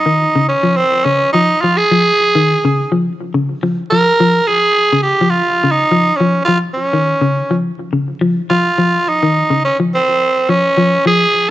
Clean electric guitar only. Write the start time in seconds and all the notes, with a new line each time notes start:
0.06 D#3
0.36 C#3
0.63 F3
1.05 C#3
1.34 F3
1.64 F3
1.92 F3
2.35 D#3
2.65 C#3
2.92 F3
3.34 C#3
3.63 F3
3.92 F3
4.20 F3
4.93 C#3
5.21 F3
5.64 C#3
5.92 F3
6.21 F3
6.48 F3
6.93 D#3
7.21 C#3
7.51 F3
7.93 C#3
8.21 F3
8.51 F3
8.78 F3
9.23 D#3
9.50 C#3
9.80 F3
10.49 F3
10.77 F3
11.06 F3